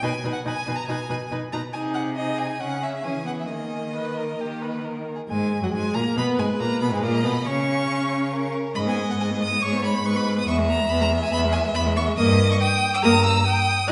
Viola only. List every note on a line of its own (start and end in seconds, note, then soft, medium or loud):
0.03 0.11 D#4 medium
0.24 0.32 D#4 medium
0.45 0.53 D#4 medium
0.67 0.75 D#4 medium
0.88 0.96 D#4 medium
1.10 1.18 D#4 medium
1.31 1.39 D#4 medium
1.52 1.60 D#4 medium
1.74 2.14 D#4 medium
2.17 2.60 D#4 medium
2.61 3.04 C#4 medium
3.05 3.26 C#4 medium
3.27 3.49 B3 soft
3.49 4.38 A#3 soft
4.40 5.07 A#3 soft
5.29 5.60 G#3 medium
5.62 5.72 F#3 medium
5.73 5.97 G#3 medium
5.95 6.18 A#3 medium
6.17 6.41 B3 medium
6.39 6.62 G#3 medium
6.61 6.81 A#3 medium
6.82 6.86 B3 medium
6.92 7.05 G#3 medium
7.03 7.24 A#3 medium
7.24 7.32 B3 medium
7.46 8.52 C#4 medium
8.76 8.88 G#3 medium
8.87 8.99 B3 medium
8.98 9.10 G#3 medium
9.09 9.19 B3 medium
9.19 9.32 G#3 medium
9.30 9.42 B3 medium
9.41 9.53 G#3 medium
9.51 9.61 B3 medium
9.62 9.74 G#3 medium
9.73 9.85 B3 medium
9.83 9.95 G#3 medium
9.94 10.04 B3 medium
10.04 10.17 G#3 medium
10.15 10.28 B3 medium
10.26 10.39 G#3 medium
10.38 10.47 B3 medium
10.48 10.60 B3 medium
10.58 10.71 G#3 medium
10.69 10.81 B3 medium
10.80 10.90 G#3 medium
10.90 11.02 B3 medium
11.01 11.13 G#3 medium
11.12 11.24 B3 medium
11.23 11.33 G#3 medium
11.33 11.46 B3 medium
11.45 11.56 G#3 medium
11.55 11.67 B3 medium
11.65 11.75 G#3 medium
11.76 11.88 B3 medium
11.86 11.98 G#3 medium
11.97 12.09 B3 medium
12.07 12.17 G#3 medium
12.18 12.38 A#3 medium
13.03 13.23 A#3 medium
13.88 13.92 D#4 medium